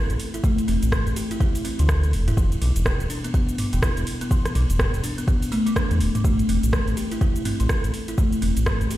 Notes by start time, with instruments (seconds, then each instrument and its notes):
0.10 analog synth bass A1, closed hi-hat, shaker
0.20 open hi-hat, shaker
0.34 kalimba E4, closed hi-hat, shaker
0.44 kalimba A3, kick, shaker
0.58 closed hi-hat, shaker
0.68 analog synth bass E1, kalimba C4, open hi-hat, shaker
0.83 analog synth bass A1, closed hi-hat, shaker
0.92 kalimba E3, kick, cross-stick, mid tom, shaker
1.07 analog synth bass A1, closed hi-hat, shaker
1.16 kalimba G4, open hi-hat, shaker
1.31 kalimba E4, closed hi-hat, shaker
1.40 kalimba E4, kick, shaker
1.55 open hi-hat, shaker
1.65 kalimba C4, open hi-hat, shaker
1.79 analog synth bass D2, kalimba E3, closed hi-hat, shaker
1.89 kalimba A4, kick, cross-stick, shaker
2.03 closed hi-hat, shaker
2.13 analog synth bass E1, open hi-hat, shaker
2.28 kalimba E4, closed hi-hat, mid tom, shaker
2.37 analog synth bass E1, kalimba E3, kick, shaker
2.52 closed hi-hat, shaker
2.62 analog synth bass B1, kalimba G3, open hi-hat, shaker
2.76 analog synth bass E1, closed hi-hat, shaker
2.86 kalimba B2, kick, cross-stick, shaker
3.00 analog synth bass E1, closed hi-hat, shaker
3.10 kalimba D4, open hi-hat, shaker
3.24 kalimba B3, closed hi-hat, shaker
3.34 kalimba B3, kick, shaker
3.49 closed hi-hat, shaker
3.58 kalimba G3, mid tom, open hi-hat, shaker
3.73 analog synth bass E1, kalimba B2, closed hi-hat, shaker
3.82 kalimba E4, kick, cross-stick, shaker
3.97 analog synth bass E1, closed hi-hat, shaker
4.07 open hi-hat, shaker
4.21 kalimba B3, closed hi-hat, shaker
4.31 kalimba E3, kick, shaker
4.45 cross-stick, closed hi-hat, shaker
4.55 analog synth bass B1, kalimba G3, open hi-hat, shaker
4.70 analog synth bass E1, closed hi-hat, shaker
4.79 kalimba B2, kick, cross-stick, mid tom, shaker
4.94 analog synth bass E1, closed hi-hat, shaker
5.04 kalimba D4, open hi-hat, shaker
5.18 kalimba B3, closed hi-hat, shaker
5.28 kalimba B3, kick, shaker
5.42 open hi-hat, shaker
5.52 kalimba A3, open hi-hat, shaker
5.66 kalimba G3, closed hi-hat, shaker
5.76 kalimba D4, kick, cross-stick, shaker
5.91 analog synth bass E2, closed hi-hat, shaker
6.00 analog synth bass D1, open hi-hat, shaker
6.15 kalimba G3, closed hi-hat, mid tom, shaker
6.24 analog synth bass A1, kalimba A3, kick, shaker
6.39 closed hi-hat, shaker
6.49 analog synth bass E1, kalimba C4, open hi-hat, shaker
6.63 analog synth bass A1, closed hi-hat, shaker
6.73 kalimba E3, kick, cross-stick, shaker
6.87 analog synth bass A1, closed hi-hat, shaker
6.97 kalimba G4, open hi-hat, shaker
7.12 kalimba E4, closed hi-hat, shaker
7.21 kalimba E4, kick, shaker
7.36 closed hi-hat, shaker
7.45 kalimba C4, mid tom, open hi-hat, shaker
7.60 analog synth bass A1, kalimba E3, closed hi-hat, shaker
7.69 kalimba A4, kick, cross-stick, shaker
7.84 analog synth bass A1, closed hi-hat, shaker
7.94 open hi-hat, shaker
8.08 kalimba E4, closed hi-hat, shaker
8.18 kalimba A3, kick, shaker
8.32 closed hi-hat, shaker
8.42 analog synth bass E1, kalimba C4, open hi-hat, shaker
8.57 analog synth bass A1, closed hi-hat, shaker
8.66 kalimba E3, kick, cross-stick, mid tom, shaker
8.81 analog synth bass A1, closed hi-hat, shaker
8.90 kalimba G4, open hi-hat, shaker